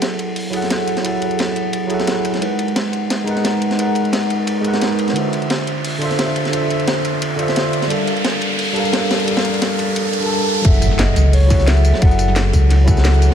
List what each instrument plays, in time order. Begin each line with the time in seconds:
Already playing: tine electric piano F#3 E4 G#4 A4 F#5, riser
0.02 snare, closed hi-hat, ride
0.19 closed hi-hat, ride
0.36 closed hi-hat, open hi-hat
0.50 tine electric piano F#3 E4 G#4, closed hi-hat, ride
0.55 tine electric piano A4 F#5
0.62 snare, closed hi-hat
0.70 snare, closed hi-hat, ride
0.88 closed hi-hat, ride
0.97 snare, closed hi-hat
1.01 tine electric piano F#3 E4 G#4, closed hi-hat
1.05 tine electric piano A4 F#5, ride
1.22 closed hi-hat, ride
1.31 closed hi-hat
1.39 snare, closed hi-hat, ride
1.56 closed hi-hat, ride
1.73 closed hi-hat, ride
1.87 tine electric piano F#3 E4 G#4, closed hi-hat, ride
1.92 tine electric piano A4 F#5
2.00 snare, closed hi-hat
2.07 snare, closed hi-hat, ride
2.25 closed hi-hat, ride
2.34 snare, closed hi-hat
2.38 tine electric piano G#3 D#4 A#4, closed hi-hat, ride
2.43 tine electric piano B4 F#5
2.59 closed hi-hat, ride
2.68 closed hi-hat
2.76 snare, closed hi-hat, ride
2.93 closed hi-hat, ride
3.10 snare, closed hi-hat, ride
3.24 tine electric piano G#3 D#4 A#4, closed hi-hat, ride
3.29 tine electric piano B4 F#5
3.36 snare, closed hi-hat
3.44 snare, closed hi-hat, ride
3.62 closed hi-hat, ride
3.71 snare, closed hi-hat
3.75 tine electric piano G#3 D#4 A#4, closed hi-hat
3.80 tine electric piano B4 F#5, ride
3.95 closed hi-hat, ride
4.05 closed hi-hat
4.13 snare, closed hi-hat, ride
4.30 closed hi-hat, ride
4.47 closed hi-hat, ride
4.61 tine electric piano G#3 D#4 A#4, closed hi-hat, ride
4.66 tine electric piano B4 F#5
4.73 snare, closed hi-hat
4.82 snare, closed hi-hat, ride
4.99 closed hi-hat, ride
5.08 snare, closed hi-hat
5.12 tine electric piano D3 D4 F4, closed hi-hat, ride
5.18 tine electric piano C5 E5
5.33 closed hi-hat, ride
5.42 closed hi-hat
5.50 snare, closed hi-hat, ride
5.67 closed hi-hat, ride
5.85 closed hi-hat, open hi-hat
5.98 tine electric piano D3 D4 F4, closed hi-hat, ride
6.03 tine electric piano C5 E5
6.11 snare, closed hi-hat
6.19 snare, closed hi-hat, ride
6.36 closed hi-hat, ride
6.45 snare, closed hi-hat
6.50 tine electric piano D3 D4 F4, closed hi-hat, ride
6.55 tine electric piano C5 E5
6.70 closed hi-hat, ride
6.80 closed hi-hat
6.88 snare, closed hi-hat, ride
7.05 closed hi-hat, ride
7.22 closed hi-hat, ride
7.36 tine electric piano D3 D4 F4, closed hi-hat, ride
7.41 tine electric piano C5 E5
7.48 snare, closed hi-hat
7.56 snare, closed hi-hat, ride
7.73 closed hi-hat, ride
7.82 snare, closed hi-hat
7.87 tine electric piano G3 D4 A4, closed hi-hat
7.91 tine electric piano A#4 F5, ride
8.07 closed hi-hat, ride
8.17 closed hi-hat
8.24 snare, closed hi-hat, ride
8.41 closed hi-hat, ride
8.59 closed hi-hat, open hi-hat
8.73 tine electric piano G3 D4 A4, closed hi-hat
8.78 tine electric piano A#4 F5
8.85 closed hi-hat
8.93 snare, closed hi-hat, ride
9.11 snare, closed hi-hat, ride
9.20 closed hi-hat
9.24 tine electric piano G3 D4 A4, closed hi-hat, ride
9.29 tine electric piano A#4 F5
9.37 snare, closed hi-hat, ride
9.45 closed hi-hat
9.54 closed hi-hat, ride
9.62 snare, closed hi-hat, ride
9.79 closed hi-hat, ride
9.96 closed hi-hat, ride
10.13 closed hi-hat
10.19 tine electric piano G3 D4 A4, closed hi-hat
10.24 tine electric piano A#4 A5
10.61 sub bass F#1, tine electric piano F#3 E4 G#4, soft synth lead E5, kick, closed hi-hat, ride, impact
10.67 tine electric piano A4 F#5
10.74 tambourine
10.82 closed hi-hat, ride, tambourine
10.91 snare
10.99 soft synth lead D#5, snare, closed hi-hat, ride
11.16 sub bass C#2, snare, closed hi-hat, ride, tambourine
11.33 soft synth lead C#5, closed hi-hat, open hi-hat
11.47 tine electric piano F#3 E4 G#4, kick, snare, closed hi-hat, tambourine
11.51 tine electric piano A4 F#5, ride
11.60 snare, tambourine
11.68 soft synth lead E5, snare, closed hi-hat, ride
11.77 tambourine
11.84 closed hi-hat, ride, tambourine
11.94 snare
11.99 sub bass F#1, tine electric piano F#3 E4 G#4, soft synth lead F#5, kick, closed hi-hat, ride
12.04 tine electric piano A4 F#5
12.11 tambourine
12.19 closed hi-hat, ride, tambourine
12.28 snare
12.36 snare, closed hi-hat, ride
12.53 sub bass C#2, kick, closed hi-hat, ride, tambourine
12.70 snare, closed hi-hat, ride
12.84 tine electric piano F#3 E4 G#4, kick, closed hi-hat, ride, tambourine
12.89 tine electric piano A4 F#5
12.97 snare, tambourine
13.04 snare, closed hi-hat, ride
13.14 snare, tambourine
13.22 closed hi-hat, ride, tambourine
13.31 snare